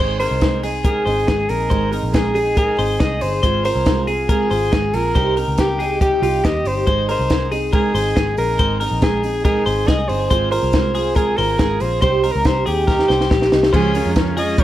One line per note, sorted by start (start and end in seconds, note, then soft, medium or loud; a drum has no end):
0.00 0.26 G#1 medium
0.00 0.20 G#3 medium
0.00 0.20 C4 medium
0.00 0.20 D#4 medium
0.00 0.18 G#4 medium
0.00 0.17 C5 medium
0.00 0.20 C5 medium
0.19 0.41 C4 soft
0.19 0.42 D#4 soft
0.19 0.42 G#4 soft
0.19 0.61 A#4 medium
0.19 0.60 C5 medium
0.19 open hi-hat medium
0.31 1.03 C2 medium
0.41 0.63 G#3 medium
0.41 0.64 C4 medium
0.41 0.63 D#4 medium
0.41 0.62 G#4 medium
0.41 kick medium
0.41 snare medium
0.41 closed hi-hat medium
0.63 0.85 C4 soft
0.63 0.85 D#4 soft
0.63 0.85 G#4 soft
0.63 0.85 G#4 medium
0.63 open hi-hat medium
0.84 1.07 G#3 medium
0.84 1.07 C4 medium
0.84 1.06 D#4 medium
0.84 1.51 G#4 medium
0.84 1.04 G#4 medium
0.84 1.05 A#4 medium
0.84 kick loud
0.84 closed hi-hat medium
1.05 1.25 G#1 medium
1.05 1.27 C4 soft
1.05 1.28 D#4 soft
1.05 1.28 G#4 soft
1.05 1.28 C5 medium
1.05 open hi-hat medium
1.27 1.47 G#1 medium
1.27 1.49 G#3 medium
1.27 1.49 C4 medium
1.27 1.49 D#4 soft
1.27 1.68 G#4 medium
1.27 1.47 G#4 medium
1.27 kick loud
1.27 snare loud
1.27 closed hi-hat medium
1.48 1.68 A#1 medium
1.48 1.69 C4 soft
1.48 1.70 D#4 soft
1.48 1.70 G#4 medium
1.48 1.93 A#4 medium
1.48 open hi-hat medium
1.70 1.99 G#1 medium
1.70 1.92 G#3 medium
1.70 1.92 C4 medium
1.70 1.91 D#4 medium
1.70 1.90 G#4 medium
1.70 1.92 C5 medium
1.70 kick medium
1.70 closed hi-hat medium
1.91 2.12 C4 soft
1.91 2.13 D#4 soft
1.91 2.13 G#4 soft
1.91 2.33 A#4 medium
1.91 open hi-hat medium
2.03 2.75 A#1 medium
2.12 2.35 G#3 medium
2.12 2.35 C4 medium
2.12 2.34 D#4 medium
2.12 2.33 G#4 medium
2.12 2.55 G#4 medium
2.12 kick medium
2.12 snare loud
2.12 closed hi-hat medium
2.34 2.55 C4 soft
2.34 2.56 D#4 soft
2.34 2.56 G#4 medium
2.34 2.57 G#4 medium
2.34 open hi-hat medium
2.55 2.78 G#3 medium
2.55 2.78 C4 medium
2.55 2.77 D#4 medium
2.55 2.76 G#4 medium
2.55 3.02 G#4 medium
2.55 2.78 A#4 medium
2.55 kick loud
2.55 closed hi-hat medium
2.77 2.97 G#1 medium
2.77 2.99 C4 soft
2.77 2.99 D#4 soft
2.77 2.99 G#4 medium
2.77 3.00 C5 medium
2.77 open hi-hat medium
2.99 3.19 C2 medium
2.99 3.21 G#3 soft
2.99 3.21 C4 medium
2.99 3.20 D#4 medium
2.99 3.41 G#4 medium
2.99 3.19 G#4 medium
2.99 3.24 D#5 medium
2.99 kick loud
2.99 snare medium
2.99 closed hi-hat medium
3.20 3.41 G1 medium
3.20 3.42 C4 soft
3.20 3.43 D#4 soft
3.20 3.43 G#4 soft
3.20 3.65 C5 medium
3.20 open hi-hat medium
3.43 3.71 G#1 medium
3.43 3.65 G#3 medium
3.43 3.65 C4 medium
3.43 3.64 F4 medium
3.43 3.63 G#4 medium
3.43 3.64 C5 medium
3.43 kick medium
3.43 closed hi-hat medium
3.64 3.85 C4 soft
3.64 3.86 F4 soft
3.64 3.86 G#4 soft
3.64 4.05 A#4 medium
3.64 4.05 C5 medium
3.64 open hi-hat medium
3.76 4.47 C2 medium
3.85 4.08 G#3 medium
3.85 4.08 C4 medium
3.85 4.07 F4 medium
3.85 4.06 G#4 medium
3.85 kick medium
3.85 snare loud
3.85 closed hi-hat medium
4.07 4.29 C4 soft
4.07 4.29 F4 soft
4.07 4.29 G#4 medium
4.07 open hi-hat medium
4.29 4.51 G#3 medium
4.29 4.51 C4 medium
4.29 4.50 F4 medium
4.29 4.49 G#4 medium
4.29 4.96 G#4 medium
4.29 4.50 A#4 medium
4.29 kick loud
4.29 closed hi-hat medium
4.50 4.69 G#1 medium
4.50 4.71 C4 soft
4.50 4.72 F4 soft
4.50 4.72 G#4 medium
4.50 4.72 C5 medium
4.50 open hi-hat medium
4.72 4.91 G#1 medium
4.72 4.94 G#3 medium
4.72 4.94 C4 medium
4.72 4.93 F4 medium
4.72 5.13 G#4 medium
4.72 4.92 G#4 medium
4.72 kick loud
4.72 snare medium
4.72 closed hi-hat medium
4.93 5.12 A#1 medium
4.93 5.14 C4 soft
4.93 5.15 F4 soft
4.93 5.15 G#4 soft
4.93 5.37 A#4 medium
4.93 open hi-hat medium
5.14 5.43 C2 medium
5.14 5.37 C3 medium
5.14 5.37 G3 medium
5.14 5.37 C4 medium
5.14 5.36 D#4 medium
5.14 5.35 G4 medium
5.14 5.37 C5 medium
5.14 kick medium
5.14 closed hi-hat medium
5.36 5.57 C4 soft
5.36 5.58 D#4 soft
5.36 5.58 G4 medium
5.36 5.78 A#4 medium
5.36 open hi-hat medium
5.48 6.19 C#2 medium
5.58 5.80 G3 medium
5.58 5.80 C4 medium
5.58 5.80 D#4 medium
5.58 5.78 G4 medium
5.58 5.99 G4 medium
5.58 kick medium
5.58 snare medium
5.58 closed hi-hat medium
5.79 6.00 C4 soft
5.79 6.01 D#4 soft
5.79 6.01 G4 soft
5.79 6.01 G#4 medium
5.79 open hi-hat medium
6.01 6.23 C3 medium
6.01 6.23 G3 medium
6.01 6.23 C4 medium
6.01 6.22 D#4 medium
6.01 6.22 G4 medium
6.01 6.47 G4 medium
6.01 6.21 G4 medium
6.01 kick medium
6.01 closed hi-hat medium
6.22 6.41 C2 medium
6.22 6.43 C4 soft
6.22 6.44 D#4 soft
6.22 6.43 F4 medium
6.22 6.44 G4 soft
6.22 open hi-hat medium
6.43 6.63 D#2 medium
6.43 6.66 G3 soft
6.43 6.66 C4 medium
6.43 6.66 D#4 medium
6.43 6.85 G4 medium
6.43 6.65 G4 medium
6.43 6.69 D#5 medium
6.43 kick loud
6.43 snare medium
6.43 closed hi-hat medium
6.65 6.84 G1 medium
6.65 6.86 C4 soft
6.65 6.87 D#4 soft
6.65 6.88 G4 soft
6.65 7.10 C5 medium
6.65 open hi-hat medium
6.87 7.15 G#1 medium
6.87 7.09 G#3 medium
6.87 7.09 C4 medium
6.87 7.08 D#4 medium
6.87 7.07 G#4 medium
6.87 7.08 C5 medium
6.87 kick medium
6.87 closed hi-hat medium
7.09 7.29 C4 soft
7.09 7.30 D#4 soft
7.09 7.30 G#4 soft
7.09 7.49 A#4 medium
7.09 7.50 C5 medium
7.09 open hi-hat medium
7.19 7.91 C2 medium
7.30 7.52 G#3 medium
7.30 7.52 C4 medium
7.30 7.51 D#4 medium
7.30 7.50 G#4 medium
7.30 kick medium
7.30 snare loud
7.30 closed hi-hat medium
7.51 7.72 C4 soft
7.51 7.72 D#4 soft
7.51 7.73 G#4 soft
7.51 7.73 G#4 medium
7.51 open hi-hat medium
7.72 7.94 G#3 medium
7.72 7.95 C4 medium
7.72 7.94 D#4 medium
7.72 7.93 G#4 medium
7.72 8.34 G#4 medium
7.72 7.94 A#4 medium
7.72 kick loud
7.72 closed hi-hat medium
7.94 8.13 G#1 medium
7.94 8.15 C4 soft
7.94 8.16 D#4 soft
7.94 8.16 G#4 medium
7.94 8.16 C5 medium
7.94 open hi-hat medium
8.16 8.35 G#1 medium
8.16 8.38 G#3 medium
8.16 8.38 C4 medium
8.16 8.57 G#4 medium
8.16 8.36 G#4 medium
8.16 kick loud
8.16 snare medium
8.16 closed hi-hat medium
8.37 8.56 A#1 medium
8.37 8.58 C4 soft
8.37 8.58 D#4 soft
8.37 8.59 G#4 soft
8.37 8.78 A#4 medium
8.37 open hi-hat medium
8.58 8.87 G#1 medium
8.58 8.80 G#3 medium
8.58 8.81 C4 medium
8.58 8.80 D#4 medium
8.58 8.79 G#4 medium
8.58 8.80 C5 medium
8.58 kick medium
8.58 closed hi-hat medium
8.80 9.01 C4 soft
8.80 9.02 D#4 soft
8.80 9.02 G#4 soft
8.80 9.23 A#4 medium
8.80 open hi-hat medium
8.91 9.63 A#1 medium
9.02 9.23 G#3 medium
9.02 9.24 C4 medium
9.02 9.23 D#4 medium
9.02 9.43 G#4 medium
9.02 9.22 G#4 medium
9.02 kick loud
9.02 snare loud
9.02 closed hi-hat medium
9.23 9.43 C4 soft
9.23 9.44 D#4 soft
9.23 9.44 G#4 soft
9.23 9.44 G#4 medium
9.23 open hi-hat medium
9.44 9.66 G#3 medium
9.44 9.66 C4 medium
9.44 9.65 D#4 medium
9.44 9.89 G#4 medium
9.44 9.64 G#4 medium
9.44 9.66 A#4 medium
9.44 kick loud
9.44 closed hi-hat medium
9.65 9.85 G#1 medium
9.65 9.86 C4 soft
9.65 9.86 D#4 soft
9.65 9.87 G#4 medium
9.65 9.87 C5 medium
9.65 open hi-hat medium
9.86 10.06 C2 medium
9.86 10.08 G#3 medium
9.86 10.09 C4 medium
9.86 10.08 D#4 medium
9.86 10.28 G#4 medium
9.86 10.07 G#4 medium
9.86 10.10 D#5 medium
9.86 kick loud
9.86 snare medium
9.86 closed hi-hat medium
10.08 10.28 G1 medium
10.08 10.29 C4 soft
10.08 10.30 D#4 soft
10.08 10.30 G#4 soft
10.08 10.51 C5 medium
10.08 open hi-hat medium
10.30 10.58 G#1 loud
10.30 10.52 G#3 medium
10.30 10.52 C4 medium
10.30 10.51 F4 medium
10.30 10.50 G#4 medium
10.30 10.51 C5 medium
10.30 kick medium
10.30 closed hi-hat medium
10.51 10.72 C4 soft
10.51 10.73 F4 soft
10.51 10.73 G#4 medium
10.51 10.92 A#4 medium
10.51 11.17 C5 medium
10.51 open hi-hat medium
10.63 11.34 C2 medium
10.73 10.95 G#3 medium
10.73 10.95 C4 medium
10.73 10.94 F4 medium
10.73 10.93 G#4 medium
10.73 kick medium
10.73 snare loud
10.73 closed hi-hat medium
10.94 11.14 C4 soft
10.94 11.15 F4 soft
10.94 11.15 G#4 medium
10.94 11.16 G#4 medium
10.94 open hi-hat medium
11.15 11.37 G#3 medium
11.15 11.37 C4 medium
11.15 11.37 F4 medium
11.15 11.38 G#4 medium
11.15 11.36 G#4 medium
11.15 11.37 A#4 medium
11.15 kick loud
11.15 closed hi-hat medium
11.37 11.57 G#1 medium
11.37 11.58 C4 soft
11.37 11.58 F4 soft
11.37 11.59 G#4 medium
11.37 11.82 A#4 medium
11.37 11.58 C5 medium
11.37 open hi-hat medium
11.58 11.78 G#1 medium
11.58 11.80 G#3 medium
11.58 11.81 C4 medium
11.58 11.80 F4 medium
11.58 11.99 G#4 medium
11.58 11.79 G#4 medium
11.58 kick loud
11.58 snare loud
11.58 closed hi-hat medium
11.80 11.99 A#1 medium
11.80 12.01 C4 soft
11.80 12.02 F4 soft
11.80 12.02 G#4 soft
11.80 12.02 C5 medium
11.80 open hi-hat medium
12.01 12.30 C2 medium
12.01 12.23 C3 medium
12.01 12.23 G3 medium
12.01 12.24 C4 medium
12.01 12.23 D#4 medium
12.01 12.21 G4 medium
12.01 12.23 C5 medium
12.01 12.33 C5 medium
12.01 kick medium
12.01 closed hi-hat medium
12.23 12.44 C4 soft
12.23 12.45 D#4 medium
12.23 12.45 G4 soft
12.23 12.64 A#4 medium
12.23 open hi-hat medium
12.32 12.44 C#2 medium
12.32 12.48 A#4 medium
12.45 12.63 C2 medium
12.45 12.66 G3 medium
12.45 12.67 C4 medium
12.45 12.66 D#4 medium
12.45 12.65 G4 medium
12.45 12.67 C5 medium
12.45 kick medium
12.45 snare medium
12.45 closed hi-hat medium
12.66 13.03 D#2 medium
12.66 12.87 C4 soft
12.66 12.87 D#4 soft
12.66 12.88 G4 medium
12.66 13.48 G4 medium
12.66 12.87 G#4 medium
12.66 open hi-hat medium
12.87 13.09 C3 medium
12.87 13.09 G3 medium
12.87 13.09 C4 medium
12.87 13.09 D#4 medium
12.87 13.07 G4 medium
12.87 13.08 A#4 medium
12.87 kick medium
12.87 snare soft
12.99 snare soft
13.08 13.28 C2 medium
13.08 13.30 C4 soft
13.08 13.31 D#4 soft
13.08 13.30 G4 soft
13.08 13.30 C5 medium
13.08 snare medium
13.21 snare medium
13.30 13.49 A#1 medium
13.30 13.52 G3 medium
13.30 13.52 C4 medium
13.30 13.51 D#4 medium
13.30 13.71 G4 medium
13.30 13.50 G4 medium
13.30 kick loud
13.30 snare medium
13.42 snare medium
13.51 13.71 C2 medium
13.51 13.73 C4 soft
13.51 13.74 D#4 soft
13.51 13.73 G4 medium
13.51 snare medium
13.63 snare medium
13.73 14.01 C#2 loud
13.73 13.94 C#3 medium
13.73 13.95 F3 medium
13.73 13.95 G#3 medium
13.73 13.92 C#4 medium
13.73 13.94 C#4 medium
13.73 13.93 F4 medium
13.73 13.92 F4 medium
13.73 13.93 G#4 medium
13.73 14.14 G#4 medium
13.73 13.95 C5 medium
13.73 kick medium
13.73 crash medium
13.94 14.15 G#3 soft
13.94 14.14 C#4 medium
13.94 14.15 C#4 soft
13.94 14.16 F4 soft
13.94 14.14 F4 medium
13.94 14.15 G#4 medium
13.94 14.35 A#4 medium
13.94 open hi-hat medium
14.06 14.64 F2 medium
14.16 14.37 C#3 medium
14.16 14.37 F3 medium
14.16 14.38 G#3 medium
14.16 14.35 C#4 medium
14.16 14.37 C#4 medium
14.16 14.36 F4 medium
14.16 14.36 G#4 medium
14.16 kick medium
14.16 snare loud
14.16 closed hi-hat medium
14.36 14.58 G#3 soft
14.36 14.56 C#4 medium
14.36 14.58 C#4 soft
14.36 14.59 F4 medium
14.36 14.57 F4 medium
14.36 14.58 G#4 medium
14.36 14.57 G#4 medium
14.36 14.62 D#5 medium
14.36 open hi-hat medium
14.58 14.64 F3 medium
14.58 14.64 G#3 medium
14.58 14.64 C#4 medium
14.58 14.64 F4 medium
14.58 14.64 G4 medium
14.58 14.64 A#4 medium
14.58 14.64 C#5 medium
14.58 kick loud
14.58 closed hi-hat medium